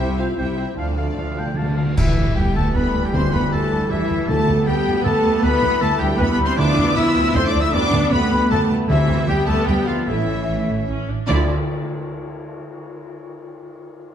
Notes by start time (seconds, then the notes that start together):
Already playing: G3 C4 E5
0.00 C2 C3 E4 G4 C5 E5 G5
0.17 C4 E4 F4 C5 E5 F5 G5
0.37 C2 C3 G3 C4 E4 G4 C5 E5 G5
0.57 C4 E4 C5 E5 G5
0.76 D2 D3 F3 A3 D4 A4 D5 F5 A5
0.94 D3
0.98 D3 A3 F4 D5 F5 A5
1.09 D3
1.16 D2 D3 F3 D4 A4 F5 A5
1.24 D3
1.31 D3
1.37 D3 A3 F4 D5 F5 G5 A5
1.47 D3
1.54 D2 D3 F3 D4 A4 F5 A5
1.62 D3
1.70 D3
1.76 D3 A3 F4 D5 F5 A5
1.86 D3
1.97 D2 D3 E3 G3 E4 E5, concert bass drum, crash
2.18 D2
2.36 D2 G3 B3 G4 G5
2.55 D2 A3 A4 A5
2.75 D2 A3 B3 B4 B5
2.95 D2
3.04 G3 G4 G5
3.13 D2 D3 G3 C4 C5 C6
3.33 D2 B3 B4 B5
3.52 D2 A3 A4 A5
3.73 D2
3.90 D2 E3 E4 E5
4.09 D2
4.27 D2 D3 G3 A3 B3 A4 A5
4.48 D2
4.67 D2 G3 B3 G4 G5
4.87 D2
5.04 D2 A3 A4 A5
5.25 D2
5.43 D2 B3 E4 B4 B5
5.63 D2
5.81 D2 A3 A4 A5
5.99 D2 G3 G4 G5
6.18 D2 G3 B3 B4 B5
6.32 B3 B4 B5
6.39 D2
6.44 C4 C5 C6
6.57 D2 D3 F3 B3 D4 E4 D5 D6
6.77 D2
6.95 D2 F3 E4 E5 E6
7.16 D2
7.34 D2 A3 C4 C5 C6
7.47 D4 D5 D6
7.51 D2 D5
7.60 E4 E5 E6
7.72 D2 G3 B3 D4 D5 D6
7.93 D2
8.12 D2 G3 A3 B3 B4 B5
8.32 D2
8.50 D2 G3 A3 B3 A4 A5
8.70 D2
8.88 D2 D3 E3 G3 C4 E4 E5
9.09 D2
9.26 D2 C3 G3 B3 G4 G5
9.46 D2 A3 A4 A5
9.66 D2 C3 G3 G4 G5
9.86 D2 F3 F4 F5
10.06 A1 E3 A3 C#4 E4 E5
10.28 A1
10.48 A1 A3
10.69 A1
10.89 A1 C#4
11.08 A1 D4
11.27 D2 D3 F3 E4 D5, tam-tam